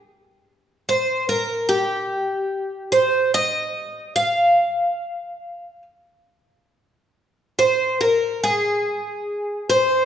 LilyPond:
\new Staff \with { instrumentName = "Twelve-string acoustic guitar" } { \time 4/4 \key f \minor \tempo 4 = 72 r4 c''8 bes'8 g'4. c''8 | ees''4 f''2 r4 | r4 c''8 bes'8 aes'4. c''8 | }